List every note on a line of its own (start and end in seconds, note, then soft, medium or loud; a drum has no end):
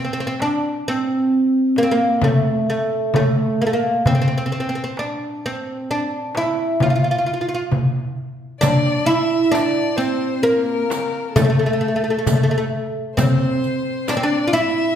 0.05 0.11 C4 soft
0.13 0.19 C4 medium
0.20 0.26 C4 medium
0.27 0.33 C4 medium
0.40 0.84 D4 medium
0.40 darbuka tek medium
0.40 frame drum medium
0.88 1.78 C4 medium
1.32 darbuka ka soft
1.76 1.85 A#3 medium
1.76 frame drum medium
1.83 1.91 C4 medium
1.91 2.24 A#3 medium
2.21 2.68 A3 medium
2.21 frame drum loud
2.21 darbuka dum medium
2.70 3.15 A3 medium
3.14 3.61 A3 medium
3.14 frame drum medium
3.14 darbuka dum medium
3.60 3.66 A#3 medium
3.60 darbuka ka soft
3.67 3.73 A3 medium
3.73 4.06 A#3 medium
4.06 4.14 C4 medium
4.06 frame drum medium
4.06 darbuka dum medium
4.15 4.20 C4 medium
4.22 4.27 C4 medium
4.28 4.36 C4 medium
4.38 4.44 C4 medium
4.46 4.51 C4 medium
4.51 4.59 C4 medium
4.51 darbuka ka soft
4.60 4.67 C4 medium
4.69 4.74 C4 medium
4.75 4.82 C4 medium
4.84 4.90 C4 medium
4.97 5.45 D4 medium
4.97 darbuka tek medium
5.46 5.91 C4 medium
5.89 6.36 D4 medium
5.89 darbuka ka soft
6.35 6.82 E4 medium
6.35 darbuka tek medium
6.35 frame drum medium
6.80 6.88 F4 medium
6.80 frame drum medium
6.80 darbuka dum medium
6.90 6.94 F4 soft
6.96 7.02 F4 medium
7.04 7.10 F4 soft
7.11 7.17 F4 medium
7.18 7.25 F4 soft
7.26 7.32 F4 soft
7.26 darbuka ka soft
7.34 7.40 F4 soft
7.41 7.47 F4 soft
7.48 7.53 F4 soft
7.54 7.62 F4 medium
7.71 frame drum medium
7.71 darbuka dum medium
8.18 darbuka ka soft
8.61 9.06 D4 loud
8.61 9.07 D5 medium
8.61 riq medium
8.61 frame drum medium
8.61 darbuka dum medium
9.05 9.51 E4 loud
9.05 9.53 E5 medium
9.05 riq soft
9.51 9.99 D4 medium
9.51 9.98 D5 medium
9.51 riq soft
9.51 darbuka tek medium
9.51 frame drum medium
9.96 10.43 C4 medium
9.96 10.45 C5 medium
9.96 riq soft
10.43 11.35 A#3 medium
10.43 11.32 A#4 medium
10.90 riq soft
10.90 darbuka tek medium
10.90 frame drum medium
11.33 11.43 A3 medium
11.33 12.67 A4 medium
11.33 riq medium
11.33 frame drum loud
11.33 darbuka dum medium
11.45 11.49 A3 soft
11.50 11.57 A3 medium
11.59 11.65 A3 soft
11.66 11.72 A3 medium
11.73 11.80 A3 soft
11.81 11.87 A3 soft
11.81 darbuka ka soft
11.88 11.95 A3 soft
11.96 12.03 A3 soft
12.04 12.09 A3 soft
12.10 12.17 A3 medium
12.19 12.25 A3 soft
12.26 12.33 A3 soft
12.26 riq medium
12.26 frame drum medium
12.26 darbuka dum medium
12.35 12.41 A3 soft
12.43 12.49 A3 medium
12.51 12.56 A3 medium
12.58 12.64 A3 medium
12.73 darbuka ka soft
13.17 14.11 C4 medium
13.17 14.09 C5 medium
13.17 riq medium
13.17 frame drum medium
13.17 darbuka dum medium
13.64 riq soft
14.07 14.16 D4 medium
14.07 14.21 D5 medium
14.07 riq soft
14.07 darbuka tek medium
14.07 frame drum medium
14.17 14.23 C4 medium
14.21 14.56 D4 medium
14.21 14.55 D5 medium
14.47 14.53 F4 medium
14.53 14.95 E4 loud
14.53 14.95 E5 medium
14.53 riq soft